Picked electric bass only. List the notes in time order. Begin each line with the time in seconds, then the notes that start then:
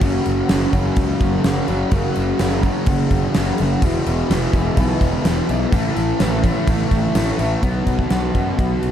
0.02 F#1
0.27 F#1
0.50 F#1
0.74 F#1
0.97 C#2
1.21 F#1
1.45 F#1
1.69 F#1
1.92 F#1
2.17 F#1
2.40 F#1
2.87 F#1
3.11 F#1
3.36 F#1
3.60 F#1
3.82 E1
4.07 E1
4.30 E1
4.53 E1
4.77 B1
5.01 E1
5.25 E1
5.49 B1
5.73 A1
5.97 A1
6.20 A1
6.68 A1
6.91 A1
7.15 A1
7.39 A1
7.62 B1
7.87 B1
8.11 B1
8.34 F#2
8.58 B1
8.83 B1